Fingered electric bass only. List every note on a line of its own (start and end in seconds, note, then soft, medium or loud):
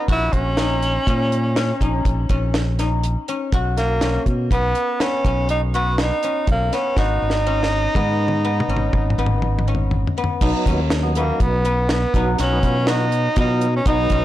0.08 0.30 A#1 medium
0.33 0.97 A#1 medium
1.07 1.71 A#2 medium
1.80 2.02 A#1 medium
2.05 2.27 A#1 medium
2.30 3.15 A#1 medium
3.52 4.17 B1 medium
4.26 4.48 B2 medium
4.51 4.72 B1 medium
5.24 6.10 B1 medium
6.48 6.70 B1 medium
6.97 7.19 G#1 medium
7.22 7.87 G#1 medium
7.95 8.60 G#2 medium
8.68 8.91 G#1 medium
8.93 9.15 G#1 medium
9.18 10.04 G#1 medium
10.41 10.53 B1 loud
10.66 11.30 D#2 medium
11.40 12.04 B1 medium
12.14 12.35 B1 medium
12.39 12.61 B1 medium
12.63 13.27 B2 medium
13.37 13.79 B2 medium
13.86 14.07 B1 medium
14.11 14.25 B1 medium